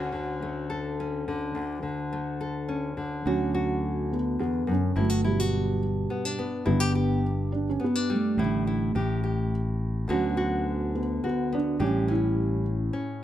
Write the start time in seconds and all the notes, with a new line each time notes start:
Already playing: D2 D3 A3 C#4 F#4
0.12 D3
0.42 A3
0.70 A4
1.00 C#4
1.28 D3
1.55 D2
1.83 D3
2.13 A3
2.41 A4
2.69 C#4
2.97 D3
3.26 D2 F#3 C#4 F#4
3.54 F#4
4.13 B3
4.39 E2 B3
4.67 F#2
4.71 C#4
4.96 G1 G2 F#3 A3 E4
5.10 F#4
5.24 B2 G3 E4
5.40 F#4
6.10 B3
6.25 D4
6.39 B3
6.65 G1 G2 D3 B3 E4
6.80 G4
6.95 G4
7.52 D4
7.69 C#4
7.80 B3
7.84 B3
7.95 D4
8.10 G3 A3
8.37 A1 A2 D3 E4
8.42 A3
8.67 E4
8.95 A1 A2 G4
9.24 G4
10.08 D2 D3 B3 C#4 F#4
10.12 F#3
10.37 F#4
10.95 B3
11.24 B3 F#4
11.53 B3 D4
11.79 A1 A2 G3 C#4 G4
12.08 C#4 E4
12.93 C#4